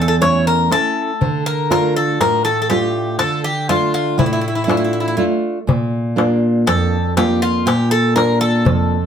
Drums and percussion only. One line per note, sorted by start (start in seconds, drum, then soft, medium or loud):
0.22 darbuka tek medium
0.72 darbuka tek medium
1.22 darbuka dum medium
1.71 darbuka tek medium
2.21 darbuka tek medium
2.70 darbuka tek medium
3.19 darbuka tek medium
3.44 darbuka tek soft
3.69 darbuka tek medium
3.95 darbuka tek soft
4.19 darbuka dum medium
4.69 darbuka tek medium
5.69 darbuka dum medium
6.18 darbuka tek medium
6.67 darbuka tek medium
7.17 darbuka tek medium
7.68 darbuka tek medium
7.92 darbuka tek soft
8.17 darbuka tek medium
8.42 darbuka tek soft
8.66 darbuka dum medium